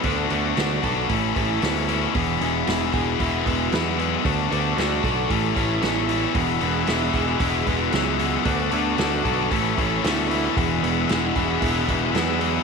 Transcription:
<<
  \new Staff \with { instrumentName = "Tonewheel organ" } { \time 4/4 \key e \mixolydian \tempo 4 = 114 << { r1 | r1 | r1 | <gis' e'''>1 |
<b' d'''>2 <b' cis'''>2 | <gis' e'''>1 | } \\ { r1 | r1 | r1 | fis''1~ |
fis''2 a''2 | fis''1 | } >> }
  \new Staff \with { instrumentName = "Overdriven electric guitar" } { \time 4/4 \key e \mixolydian d8 b8 fis'8 a'8 a8 e'8 b8 e'8 | e8 b8 e'8 gis'8 e'8 b8 fis8 b8 | d8 b8 fis'8 a'8 a8 e'8 b8 e'8 | e8 b8 e'8 gis'8 e'8 b8 fis8 b8 |
d8 b8 fis'8 a'8 a8 e'8 b8 e'8 | e8 b8 e'8 gis'8 e'8 b8 fis8 b8 | }
  \new Staff \with { instrumentName = "Distorted electric guitar" } { \time 4/4 \key e \mixolydian <d a d' fis'>8 <a d' fis'>8 <d a d' fis'>8 <a d' fis'>8 <a, e a cis' e'>8 <a cis' e'>8 <e a cis' e'>8 <a cis' e'>8 | <e, b, e gis b e'>8 <e gis b e'>8 <e, b, e gis b e'>8 <e gis b e'>8 <e, b, e gis b e'>8 <e gis b e'>8 <e gis b e'>8 <e gis b e'>8 | <d a d' fis'>8 <a d' fis'>8 <d a d' fis'>8 <a d' fis'>8 <a, e a cis' e'>8 <a cis' e'>8 <e a cis' e'>8 <a cis' e'>8 | <e, b, e gis b e'>8 <e gis b e'>8 <e, b, e gis b e'>8 <e gis b e'>8 <e, b, e gis b e'>8 <e gis b e'>8 <e gis b e'>8 <e gis b e'>8 |
<d a d' fis'>8 <a d' fis'>8 <d a d' fis'>8 <a d' fis'>8 <a, e a cis' e'>8 <a cis' e'>8 <e a cis' e'>8 <a cis' e'>8 | <e, b, e gis b e'>8 <e gis b e'>8 <e, b, e gis b e'>8 <e gis b e'>8 <e, b, e gis b e'>8 <e gis b e'>8 <e gis b e'>8 <e gis b e'>8 | }
  \new Staff \with { instrumentName = "Picked electric bass" } { \clef bass \time 4/4 \key e \mixolydian d,8 d,8 d,8 b,,8 a,,8 a,,8 d,4 | e,,8 e,,8 e,,8 e,,8 e,,8 e,,8 e,4 | d,8 d,8 d,8 b,,8 a,,8 a,,8 a,,4 | e,,8 e,,8 e,,8 e,,8 e,,8 e,,8 cis,4 |
d,8 d,8 d,8 b,,8 a,,8 a,,8 d,4 | e,,8 e,,8 e,,8 e,,8 e,,8 e,,8 e,4 | }
  \new DrumStaff \with { instrumentName = "Drums" } \drummode { \time 4/4 <hho bd>8 hho8 <hho sn>8 <hho bd>8 <hho bd>8 <hho bd>8 <hho sn>8 hho8 | <hho bd>8 hho8 <hho sn>8 <hho bd>8 <hho bd>8 <hho bd>8 <hho sn>8 hho8 | <hho bd>8 hho8 <hho sn>8 <hho bd>8 <hho bd>8 <hho bd>8 <hho sn>8 hho8 | <hho bd>8 hho8 <hho sn>8 <hho bd>8 <hho bd>8 <hho bd>8 <hho sn>8 hho8 |
<hho bd>8 hho8 <hho sn>8 <hho bd>8 <hho bd>8 <hho bd>8 <hho sn>8 hho8 | <hho bd>8 hho8 <hho sn>8 <hho bd>8 <hho bd>8 <hho bd>8 <hho sn>8 hho8 | }
>>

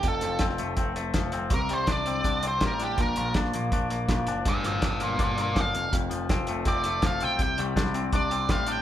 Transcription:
<<
  \new Staff \with { instrumentName = "Lead electric guitar" } { \time 4/4 \key f \mixolydian \tempo 4 = 163 a'4 r2. | bes'8 c''8 d''4. c''8 bes'8 g'8 | bes'4 r2. | <d'' f''>8 <d'' f''>8 <d'' f''>8 <bes' d''>8 <bes' d''>8 <bes' d''>8 f''4 |
r2 d''4 f''8 g''8 | g''8 r4. d''4 f''8 g''8 | }
  \new Staff \with { instrumentName = "Clean electric guitar" } { \time 4/4 \key f \mixolydian f,8 f8 c'8 a8 c'8 a8 f8 c'8 | c8 g8 d'8 c'8 d'8 c'8 g8 d'8 | bes,8 f8 d'8 bes8 d'8 bes8 f8 d'8 | g,8 f8 d'8 bes8 d'8 bes8 f8 f,8 |
f,8 f8 c'8 a8 c'8 a8 f8 c'8 | c8 g8 d'8 c'8 d'8 c'8 g8 d'8 | }
  \new Staff \with { instrumentName = "Picked electric bass" } { \clef bass \time 4/4 \key f \mixolydian f,,8 f,,8 f,,8 f,,8 f,,4 f,,8 f,,8 | c,8 c,8 c,4 c,4 a,,4 | bes,,8 bes,,8 bes,,8 bes,,8 bes,,4 bes,,8 fis,,8 | g,,8 g,,8 g,,4 g,,4 g,,8 f,,8 |
f,,8 f,,8 f,,8 f,,8 f,,4 f,,8 b,,8 | c,8 c,8 c,4 c,4 a,,4 | }
  \new DrumStaff \with { instrumentName = "Drums" } \drummode { \time 4/4 <hh bd>8 <hh sn>8 <hh bd sn>16 sn16 hh8 <hh bd>8 hh8 <hh bd sn>8 hh8 | <hh bd>8 hh8 <hh bd sn>8 hh8 <hh bd>8 hh8 <hh bd sn>8 hh8 | <hh bd>8 hh8 <hh bd sn>16 sn16 hh8 <hh bd>8 hh8 <hh bd sn>8 hh8 | <hh bd>8 <hh sn>8 <hh bd sn>8 hh8 <hh bd>8 hh8 <hh bd sn>8 hh8 |
<hh bd>8 hh8 <hh bd sn>8 hh8 <hh bd>8 hh8 <hh bd sn>8 hh8 | <hh bd>8 hh8 <hh bd sn>16 sn16 hh8 <hh bd>8 hh8 <hh bd sn>8 hh8 | }
>>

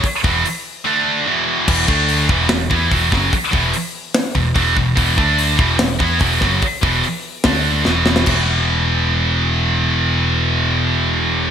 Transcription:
<<
  \new Staff \with { instrumentName = "Distorted electric guitar" } { \clef bass \time 4/4 \key d \mixolydian \tempo 4 = 146 r8 <e, b, e>8 r4 <d a d'>4 <e, b, e>4 | <e, b, e>8 <d a d'>4 <e, b, e>8 <e, b,>8 <e b e'>8 <e, b, e>8 <fis, cis fis>8 | r8 <e, b, e>8 r4. <e, b,>8 <e, b, e>8 <e, b,>8 | <e, b, e>8 <d a d'>4 <e, b, e>8 <e, b,>8 <e b e'>8 <e, b, e>8 <fis, cis fis>8 |
r8 <e, b, e>8 r4 <d a d'>4 <e, b, e>4 | <e, b, e>1~ | <e, b, e>1 | }
  \new Staff \with { instrumentName = "Picked electric bass" } { \clef bass \time 4/4 \key d \mixolydian r8 e,,8 r2. | e,,8 d,4 e,,8 e,,8 e,8 e,,8 fis,,8 | r8 e,,8 r4. e,,8 e,,8 e,,8 | e,,8 d,4 e,,8 e,,8 e,8 e,,8 fis,,8 |
r8 e,,8 r4 d,4 e,,4 | e,,1~ | e,,1 | }
  \new DrumStaff \with { instrumentName = "Drums" } \drummode { \time 4/4 <hho bd>8 bd8 hho4 r4 r4 | <cymc bd>8 bd8 hho8 bd8 <hho sn>8 bd8 <hho bd>8 <bd sn>8 | <hho bd>8 bd8 hho4 <hho sn>8 bd8 <hho bd>8 bd8 | <hho bd>8 bd8 hho8 bd8 <hho sn>8 bd8 <hho bd>8 <bd sn>8 |
<hho bd>8 bd8 hho4 <hho bd sn>4 sn8 sn16 sn16 | <cymc bd>4 r4 r4 r4 | r4 r4 r4 r4 | }
>>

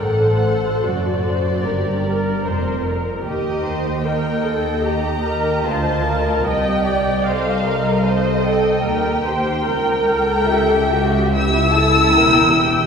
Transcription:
<<
  \new Staff \with { instrumentName = "Violin section" } { \time 4/4 \key c \dorian \tempo 4 = 75 fis''4 d''2~ d''8 r8 | ees''4 g''4 bes''4 a''4 | g''4 f''4 ees''4. r8 | g''2 e'''2 | }
  \new Staff \with { instrumentName = "Viola section" } { \time 4/4 \key c \dorian a'4 fis'4 g'8 bes'8 c''8 bes'8 | g'8 c''8 bes'8 a'8 g'8 bes'8 c''8 bes'8 | ees''8 d''8 c''8 bes'8 c''8 a'8 bes'8 c''8 | ais'4 a'8 g'8 g'8 a'8 ais'8 g'8 | }
  \new Staff \with { instrumentName = "Violin section" } { \time 4/4 \key c \dorian << { c''2 bes'2 | bes'4 ees''2. | ees''8 ees''4. c''8 g''4.~ | g''4 e''4 e''8 a''8 g''8 g''8 | } \\ { a'4 a'8 c''8 bes'2 | g'4 bes'8 a'8 g'8 g'8 f'4 | g'4 a'2 g'4 | ais'8 a'8 g'8 fis'8 e'2 | } >> }
  \new Staff \with { instrumentName = "Cello section" } { \clef bass \time 4/4 \key c \dorian a,4 fis,4 g,4 f,4 | ees,2. d,4 | c,2. ees,4 | cis,2. e,4 | }
  \new Staff \with { instrumentName = "Double bass section" } { \clef bass \time 4/4 \key c \dorian a,,4 fis,,4 g,,4 f,,4 | ees,2. d,4 | c,2. ees,4 | cis,2. e,,4 | }
>>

